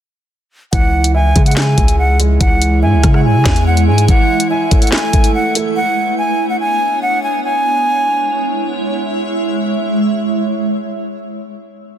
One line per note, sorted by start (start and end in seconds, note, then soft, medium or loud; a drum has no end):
0.72 1.33 C#2 loud
0.72 1.78 E3 medium
0.72 4.05 G#3 medium
0.72 5.72 E4 medium
0.72 4.05 C#5 medium
0.72 5.72 E5 medium
0.72 1.12 F#5 loud
0.72 kick loud
0.72 closed hi-hat medium
1.04 closed hi-hat medium
1.14 2.19 E4 medium
1.14 1.45 G#5 medium
1.36 1.76 C#3 loud
1.36 1.77 G#3 medium
1.36 kick medium
1.36 closed hi-hat medium
1.46 1.56 F#5 medium
1.46 closed hi-hat medium
1.51 closed hi-hat medium
1.57 1.96 G#5 medium
1.57 snare loud
1.57 clap loud
1.57 closed hi-hat medium
1.62 closed hi-hat medium
1.78 2.38 C#2 loud
1.78 2.18 G#3 medium
1.78 kick medium
1.78 closed hi-hat medium
1.88 closed hi-hat medium
1.99 2.18 F#5 medium
2.20 3.02 G#3 medium
2.20 closed hi-hat medium
2.40 2.84 C#2 loud
2.40 3.45 E3 medium
2.40 2.80 F#5 loud
2.40 kick loud
2.40 closed hi-hat medium
2.62 closed hi-hat medium
2.82 2.95 G#2 loud
2.82 3.87 E4 medium
2.82 3.12 G#5 medium
2.93 3.03 C#2 loud
3.04 3.26 C#3 loud
3.04 kick medium
3.04 cross-stick medium
3.04 closed hi-hat medium
3.14 3.24 F#5 medium
3.14 cross-stick medium
3.25 3.37 G#2 loud
3.25 3.64 G#5 medium
3.35 3.45 C#3 loud
3.45 3.89 E2 loud
3.45 kick medium
3.45 snare loud
3.45 clap medium
3.45 closed hi-hat medium
3.56 closed hi-hat medium
3.67 3.86 F#5 medium
3.77 closed hi-hat medium
3.87 4.07 G#2 loud
3.87 4.08 G#3 medium
3.87 4.07 G#5 medium
3.98 closed hi-hat medium
4.08 5.13 E3 loud
4.08 4.48 F#5 loud
4.08 kick loud
4.08 closed hi-hat medium
4.40 closed hi-hat medium
4.50 5.55 E4 medium
4.50 4.80 G#5 medium
4.71 5.12 A3 medium
4.71 kick medium
4.71 closed hi-hat medium
4.82 4.92 F#5 medium
4.82 closed hi-hat medium
4.87 closed hi-hat medium
4.92 5.32 G#5 medium
4.92 snare loud
4.92 clap loud
4.92 closed hi-hat medium
4.98 closed hi-hat medium
5.13 5.54 A3 medium
5.13 kick medium
5.13 closed hi-hat medium
5.24 closed hi-hat medium
5.34 5.54 F#5 loud
5.55 5.77 A3 medium
5.55 closed hi-hat medium
5.76 6.16 F#5 loud
6.18 6.48 G#5 medium
6.49 6.59 F#5 medium
6.60 7.00 G#5 medium
7.02 7.22 F#5 medium
7.23 7.43 G#5 medium
7.44 10.89 G#3 medium
7.44 10.89 E4 medium
7.44 10.89 C#5 medium
7.44 10.89 E5 medium
7.44 8.66 G#5 loud